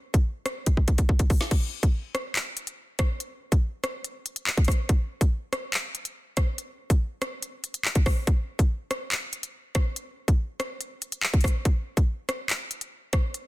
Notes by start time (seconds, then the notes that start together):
0.14 kick, closed hi-hat
0.46 cross-stick, closed hi-hat
0.66 kick, closed hi-hat
0.77 kick
0.88 kick, closed hi-hat
0.98 kick, closed hi-hat
1.09 kick
1.19 kick, closed hi-hat
1.30 kick, open hi-hat
1.41 snare
1.51 kick, closed hi-hat, crash
1.83 kick, closed hi-hat
2.15 cross-stick, closed hi-hat
2.35 clap, closed hi-hat
2.57 closed hi-hat
2.67 closed hi-hat
2.99 kick, cross-stick, closed hi-hat
3.20 closed hi-hat
3.52 kick, closed hi-hat
3.84 cross-stick, closed hi-hat
4.04 closed hi-hat
4.26 closed hi-hat
4.36 closed hi-hat
4.47 clap
4.57 kick, closed hi-hat
4.65 kick, cross-stick, closed hi-hat, open hi-hat
4.72 closed hi-hat
4.89 kick, closed hi-hat
5.21 kick, closed hi-hat
5.53 cross-stick, closed hi-hat
5.73 clap, closed hi-hat
5.95 closed hi-hat
6.05 closed hi-hat
6.37 kick, cross-stick, closed hi-hat
6.58 closed hi-hat
6.90 kick, closed hi-hat
7.22 cross-stick, closed hi-hat
7.42 closed hi-hat
7.64 closed hi-hat
7.74 closed hi-hat
7.85 clap
7.95 kick, closed hi-hat
8.06 kick, cross-stick, open hi-hat
8.27 kick, closed hi-hat
8.59 kick, closed hi-hat
8.91 cross-stick, closed hi-hat
9.12 clap, closed hi-hat
9.33 closed hi-hat
9.43 closed hi-hat
9.75 kick, cross-stick, closed hi-hat
9.96 closed hi-hat
10.28 kick, closed hi-hat
10.60 cross-stick, closed hi-hat
10.81 closed hi-hat
11.02 closed hi-hat
11.12 closed hi-hat
11.23 clap
11.34 kick, closed hi-hat
11.41 kick, cross-stick, closed hi-hat, open hi-hat
11.48 closed hi-hat
11.65 kick, closed hi-hat
11.97 kick, closed hi-hat
12.29 cross-stick, closed hi-hat
12.50 clap, closed hi-hat
12.71 closed hi-hat
12.81 closed hi-hat
13.13 kick, cross-stick, closed hi-hat
13.34 closed hi-hat